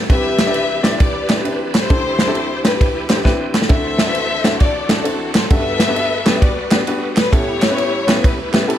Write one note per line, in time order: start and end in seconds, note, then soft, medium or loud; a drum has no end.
0.00 5.47 E3 medium
0.10 1.86 C2 medium
0.10 1.86 C3 medium
0.10 0.37 C4 medium
0.10 5.48 C4 medium
0.10 0.37 D4 medium
0.10 5.48 D4 medium
0.10 0.37 E4 medium
0.10 0.37 G4 medium
0.10 0.96 G4 loud
0.10 0.37 B4 medium
0.10 1.89 B4 medium
0.10 0.97 B4 loud
0.10 0.96 E5 loud
0.10 kick loud
0.10 ride medium
0.39 snare loud
0.39 clap medium
0.39 ride medium
0.46 0.67 C4 medium
0.46 0.67 D4 medium
0.46 0.67 E4 medium
0.46 0.67 G4 medium
0.46 0.67 D5 medium
0.54 ride medium
0.83 1.06 C4 medium
0.83 1.06 D4 medium
0.83 1.06 E4 medium
0.83 1.06 G4 medium
0.83 1.06 D5 loud
0.83 snare loud
0.83 clap medium
0.83 ride medium
1.00 1.75 G4 medium
1.00 1.87 B4 medium
1.00 1.45 D5 loud
1.00 kick loud
1.00 ride medium
1.29 1.39 C4 medium
1.29 1.39 D4 medium
1.29 1.39 E4 medium
1.29 1.39 G4 medium
1.29 1.39 B4 medium
1.29 snare loud
1.29 clap medium
1.29 ride medium
1.44 1.78 C4 medium
1.44 1.78 D4 medium
1.44 1.78 E4 medium
1.44 1.78 G4 medium
1.44 1.78 B4 medium
1.44 ride medium
1.75 2.61 E4 medium
1.75 2.61 G4 medium
1.75 2.61 C5 loud
1.75 snare loud
1.75 clap medium
1.75 ride medium
1.90 3.67 D2 medium
1.90 3.66 D3 medium
1.90 2.17 C4 medium
1.90 2.17 D4 medium
1.90 2.17 E4 medium
1.90 2.17 G4 medium
1.90 3.69 G4 medium
1.90 2.17 A4 medium
1.90 kick loud
1.90 ride medium
2.19 snare loud
2.19 clap medium
2.19 ride medium
2.27 2.47 C4 medium
2.27 2.47 D4 medium
2.27 2.47 E4 medium
2.27 2.47 G4 medium
2.27 2.48 A4 medium
2.35 ride medium
2.64 2.87 C4 medium
2.64 2.86 D4 medium
2.64 2.87 E4 medium
2.64 3.51 E4 medium
2.64 2.87 G4 medium
2.64 3.52 G4 medium
2.64 3.22 B4 loud
2.64 2.86 C5 medium
2.64 snare loud
2.64 clap medium
2.64 ride medium
2.81 kick loud
2.81 ride medium
3.10 3.19 C4 medium
3.10 3.19 D4 medium
3.10 3.19 E4 medium
3.10 3.19 G4 medium
3.10 3.19 C5 medium
3.10 snare loud
3.10 clap medium
3.10 ride medium
3.24 3.58 C4 loud
3.24 3.58 D4 medium
3.24 3.58 E4 medium
3.24 3.58 G4 medium
3.24 3.58 B4 loud
3.24 kick medium
3.24 snare medium
3.54 snare medium
3.54 clap medium
3.62 snare medium
3.69 5.47 D2 medium
3.69 5.47 D3 medium
3.69 3.97 C4 medium
3.69 3.97 D4 medium
3.69 3.97 E4 medium
3.69 3.97 F#4 medium
3.69 7.29 F#4 medium
3.69 3.97 A4 medium
3.69 4.57 A4 medium
3.69 4.57 C5 medium
3.69 4.57 E5 loud
3.69 kick loud
3.69 ride medium
3.99 snare loud
3.99 clap medium
3.99 ride medium
4.06 4.27 C4 medium
4.06 4.27 D4 medium
4.06 4.27 E4 medium
4.06 4.27 F#4 medium
4.06 4.27 B4 medium
4.15 ride medium
4.43 4.67 C4 medium
4.43 4.67 D4 medium
4.43 4.67 E4 medium
4.43 4.67 F#4 medium
4.43 4.67 A4 medium
4.43 snare loud
4.43 clap medium
4.43 ride medium
4.60 5.48 F#4 medium
4.60 5.48 A4 medium
4.60 5.06 D5 loud
4.60 kick loud
4.60 ride medium
4.89 4.99 C4 medium
4.89 5.00 D4 medium
4.89 4.99 E4 medium
4.89 5.00 F#4 medium
4.89 5.00 A4 medium
4.89 snare loud
4.89 clap medium
4.89 ride medium
5.04 5.38 C4 medium
5.04 5.38 D4 medium
5.04 5.38 E4 medium
5.04 5.38 F#4 medium
5.04 5.38 A4 medium
5.04 ride medium
5.35 5.51 C5 medium
5.35 snare loud
5.35 clap medium
5.35 ride medium
5.50 7.28 G1 medium
5.50 7.29 G2 medium
5.50 8.78 G3 medium
5.50 5.78 B3 medium
5.50 8.78 B3 medium
5.50 5.78 D4 medium
5.50 5.78 F#4 medium
5.50 5.78 G4 medium
5.50 5.78 A4 medium
5.50 8.78 A4 medium
5.50 6.38 A4 medium
5.50 6.38 B4 medium
5.50 6.38 E5 loud
5.50 kick loud
5.50 ride medium
5.80 snare loud
5.80 clap medium
5.80 ride medium
5.88 6.09 B3 medium
5.88 6.09 D4 medium
5.88 6.09 F#4 medium
5.88 6.09 G4 medium
5.88 6.09 B4 medium
5.96 ride medium
6.25 6.48 B3 medium
6.25 6.48 D4 medium
6.25 6.48 F#4 medium
6.25 6.48 G4 medium
6.25 6.49 B4 loud
6.25 snare loud
6.25 clap medium
6.25 ride medium
6.42 7.29 F#4 medium
6.42 7.17 B4 medium
6.42 6.87 D5 medium
6.42 kick loud
6.42 ride medium
6.71 6.81 B3 medium
6.71 6.81 D4 medium
6.71 6.81 F#4 medium
6.71 6.81 G4 medium
6.71 6.81 B4 medium
6.71 snare loud
6.71 clap medium
6.71 ride medium
6.87 7.20 B3 medium
6.87 7.21 D4 medium
6.87 7.21 F#4 medium
6.87 7.21 G4 medium
6.87 7.21 B4 medium
6.87 ride medium
7.17 7.32 B4 loud
7.17 snare loud
7.17 clap medium
7.17 ride medium
7.32 8.78 A1 medium
7.32 8.78 A2 medium
7.32 7.60 B3 medium
7.32 7.60 C#4 medium
7.32 8.78 C#4 medium
7.32 7.60 E4 medium
7.32 8.20 E4 medium
7.32 7.60 G4 medium
7.32 8.19 G4 medium
7.32 7.60 A4 medium
7.32 8.24 C#5 loud
7.32 kick loud
7.32 ride medium
7.62 snare loud
7.62 clap medium
7.62 ride medium
7.70 7.90 B3 medium
7.70 7.91 C#4 medium
7.70 7.90 E4 medium
7.70 7.90 G4 medium
7.70 7.91 B4 medium
7.78 ride medium
8.07 8.30 B3 medium
8.07 8.30 C#4 medium
8.07 8.30 E4 medium
8.07 8.30 G4 medium
8.07 8.30 B4 loud
8.07 snare loud
8.07 clap medium
8.07 ride medium
8.23 8.78 E4 medium
8.23 8.78 G4 medium
8.23 8.69 B4 loud
8.23 kick loud
8.23 ride medium
8.53 8.63 B3 medium
8.53 8.63 C#4 medium
8.53 8.63 E4 medium
8.53 8.63 G4 medium
8.53 8.63 B4 medium
8.53 snare loud
8.53 clap medium
8.53 ride medium
8.68 8.78 B3 medium
8.68 8.78 C#4 medium
8.68 8.78 E4 medium
8.68 8.78 G4 medium
8.68 8.78 A4 medium
8.68 ride medium